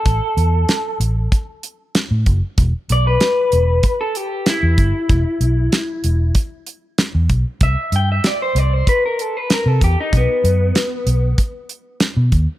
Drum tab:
HH |xxxxxxxx|xxxxxxxx|xxxxxxxx|xxxxxxxx|
SD |--o---o-|--o---o-|--o---o-|--o---o-|
BD |o---o--o|o---o--o|o---o--o|o---o--o|

HH |xxxxxxxx|
SD |--o---o-|
BD |o---o--o|